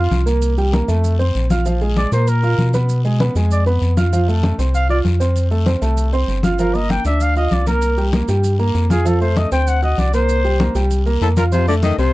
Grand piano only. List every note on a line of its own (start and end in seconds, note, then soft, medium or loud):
0.00 0.21 F4 medium
0.00 0.21 F5 medium
0.00 0.21 F6 medium
0.26 0.52 A#3 medium
0.26 0.52 A#4 medium
0.26 0.52 A#5 medium
0.58 0.70 G3 medium
0.58 0.71 G4 medium
0.58 0.71 G5 medium
0.73 0.86 A#3 medium
0.73 0.86 A#4 medium
0.73 0.86 A#5 medium
0.88 1.14 A3 medium
0.88 1.14 A4 medium
0.88 1.14 A5 medium
1.19 1.45 C4 medium
1.19 1.45 C5 medium
1.19 1.45 C6 medium
1.50 1.63 F4 medium
1.50 1.63 F5 medium
1.50 1.63 F6 medium
1.66 1.78 F3 medium
1.66 1.79 F4 medium
1.66 1.79 F5 medium
1.81 2.07 G#3 medium
1.81 2.07 G#4 medium
1.81 2.07 G#5 medium
2.12 2.37 A#3 medium
2.12 2.38 A#4 medium
2.12 2.38 A#5 medium
2.43 2.68 F4 medium
2.43 2.68 F5 medium
2.43 2.69 F6 medium
2.74 2.99 B3 medium
2.74 2.99 B4 medium
2.74 3.00 B5 medium
3.05 3.17 G#3 medium
3.05 3.18 G#4 medium
3.05 3.18 G#5 medium
3.20 3.33 B3 medium
3.20 3.33 B4 medium
3.20 3.33 B5 medium
3.36 3.61 G#3 medium
3.36 3.61 G#4 medium
3.36 3.61 G#5 medium
3.66 3.92 B3 medium
3.66 3.92 B4 medium
3.66 3.92 B5 medium
3.97 4.10 F4 medium
3.97 4.10 F5 medium
3.97 4.10 F6 medium
4.13 4.25 F3 medium
4.13 4.25 F4 medium
4.13 4.26 F5 medium
4.28 4.53 A3 medium
4.28 4.53 A4 medium
4.28 4.54 A5 medium
4.58 4.84 C4 medium
4.58 4.84 C5 medium
4.58 4.84 C6 medium
4.89 5.15 F4 medium
4.89 5.15 F5 medium
4.89 5.15 F6 medium
5.20 5.45 C4 medium
5.20 5.46 C5 medium
5.20 5.46 C6 medium
5.51 5.64 A3 medium
5.51 5.64 A4 medium
5.51 5.64 A5 medium
5.66 5.79 C4 medium
5.66 5.79 C5 medium
5.66 5.79 C6 medium
5.82 6.07 A3 medium
5.82 6.07 A4 medium
5.82 6.07 A5 medium
6.13 6.38 C4 medium
6.13 6.38 C5 medium
6.13 6.38 C6 medium
6.44 6.56 F4 medium
6.44 6.56 F5 medium
6.44 6.57 F6 medium
6.59 6.72 F3 medium
6.59 6.72 F4 medium
6.59 6.72 F5 medium
6.75 7.00 A#3 medium
6.75 7.00 A#4 medium
6.75 7.00 A#5 medium
7.05 7.31 D4 medium
7.05 7.31 D5 medium
7.05 7.31 D6 medium
7.36 7.61 F4 medium
7.36 7.62 F5 medium
7.36 7.62 F6 medium
7.67 7.92 A#3 medium
7.67 7.92 A#4 medium
7.67 7.93 A#5 medium
7.97 8.10 G3 medium
7.97 8.10 G4 medium
7.97 8.11 G5 medium
8.13 8.26 A#3 medium
8.13 8.26 A#4 medium
8.13 8.26 A#5 medium
8.28 8.54 G3 medium
8.28 8.54 G4 medium
8.28 8.54 G5 medium
8.59 8.85 A#3 medium
8.59 8.85 A#4 medium
8.59 8.85 A#5 medium
8.90 9.03 F4 medium
8.90 9.03 F5 medium
8.90 9.03 F6 medium
9.05 9.18 F3 medium
9.05 9.18 F4 medium
9.05 9.18 F5 medium
9.21 9.46 A3 medium
9.21 9.46 A4 medium
9.21 9.47 A5 medium
9.52 9.77 C4 medium
9.52 9.77 C5 medium
9.52 9.77 C6 medium
9.82 10.08 F#4 medium
9.82 10.08 F#5 medium
9.82 10.08 F#6 medium
10.14 10.39 A#3 medium
10.14 10.39 A#4 medium
10.14 10.39 A#5 medium
10.44 10.57 G3 medium
10.44 10.57 G4 medium
10.44 10.57 G5 medium
10.60 10.72 A#3 medium
10.60 10.72 A#4 medium
10.60 10.73 A#5 medium
10.75 11.00 G3 medium
10.75 11.01 G4 medium
10.75 11.01 G5 medium
11.06 11.31 A#3 medium
11.06 11.31 A#4 medium
11.06 11.32 A#5 medium
11.37 11.50 F4 medium
11.37 11.50 F5 medium
11.37 11.50 F6 medium
11.52 11.65 F3 medium
11.52 11.65 F4 medium
11.52 11.65 F5 medium
11.68 11.93 A3 medium
11.68 11.93 A4 medium
11.68 11.93 A5 medium
11.98 12.13 C4 medium
11.98 12.13 C5 medium
11.98 12.13 C6 medium